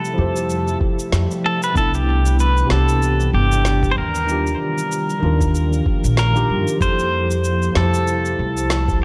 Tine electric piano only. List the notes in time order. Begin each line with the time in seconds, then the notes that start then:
Already playing: F3 E4 G4 A4
0.14 F3 E4
0.18 G4 C5
1.72 C3 B3
1.77 D4 E4
2.66 C3 B3
2.71 D4 G4
4.25 D#3 D4
4.29 F4 G4
5.19 D#3 D4
5.24 F4 A#4
6.33 D#3 D4 F4 G4
6.77 F3 E4
6.82 G4 A4
7.72 F3 E4
7.77 G4 C5